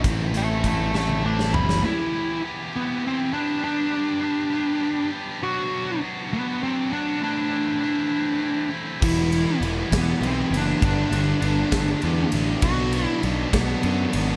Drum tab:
CC |------------|------------|------------|------------|
RD |------------|------------|------------|------------|
HH |x-x-x-------|------------|------------|------------|
SD |------o--o-o|------------|------------|------------|
T1 |-------o----|------------|------------|------------|
FT |----------o-|------------|------------|------------|
BD |o---o-------|------------|------------|------------|

CC |------------|x-----------|------------|------------|
RD |------------|--x-x-x-x-x-|x-x-x-x-x-x-|x-x-x-x-x-x-|
HH |------------|------------|------------|------------|
SD |------------|------o-----|------o-----|------o-----|
T1 |------------|------------|------------|------------|
FT |------------|------------|------------|------------|
BD |------------|o-----o-----|o-----o-----|o-----o-----|